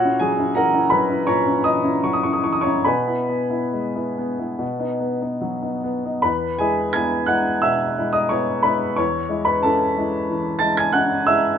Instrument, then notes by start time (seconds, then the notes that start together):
upright piano
Already playing: F#4 C#5 F#5
0.04 C#4 E4
0.20 F#3 G#4 G#5
0.38 C#4 E4
0.55 E3 A#4 F#5 A#5
0.73 C#4 E4
0.90 F#3 B4 B5
1.09 C#4 E4
1.27 A#2 C#5 A#5 C#6
1.47 C#4 E4
1.64 E3 D#5 D#6
1.84 C#4 E4
2.03 F#3 C#6
2.13 D#6
2.23 C#4 E4 C#6
2.33 D#6
2.44 E3 C#6
2.53 D#6
2.61 C#5 C#6
2.66 C#4 E4
2.84 B2 B4 G#5 B5
3.07 B3 E4
3.29 B3
3.50 B3 E4
3.73 G#3
3.95 B3 E4
4.18 B3
4.39 B3 E4
4.59 B2
4.79 B3 D#4
5.00 B3
5.22 B3 D#4
5.41 F#3
5.62 B3 D#4
5.84 B3
6.05 B3 D#4
6.22 E2 B4 B5
6.59 G#3 E4 G#4 G#5
6.93 B3 E4 G#5 G#6
7.26 G#3 E4 F#5 F#6
7.62 B2 E5 E6
7.98 G#3 E4
8.13 D#5 D#6
8.29 B3 E4 C#5 C#6
8.63 G#3 E4 B4 B5
8.96 E2 C#5 C#6
9.29 G#3 E4
9.45 B4 B5
9.63 C#4 E4 A4 A5
9.97 G#3 E4
10.30 E3
10.59 G#3 E4 A5 A6
10.77 G#5 G#6
10.93 C#4 E4 F#5 F#6
11.27 G#3 E4 E5 E6